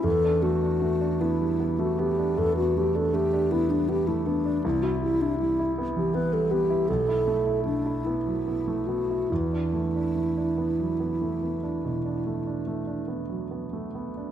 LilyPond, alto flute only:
\new Staff \with { instrumentName = "Alto flute" } { \time 12/8 \key e \minor \tempo 4. = 51 a'8 fis'4 e'8. fis'16 g'8 a'16 fis'16 g'16 a'16 g'8 e'16 d'16 g'16 e'16 d'8 | e'16 fis'16 e'16 d'16 e'8. g'16 b'16 a'16 g'8 a'4 d'8 e'4 fis'8 | e'1~ e'8 r4. | }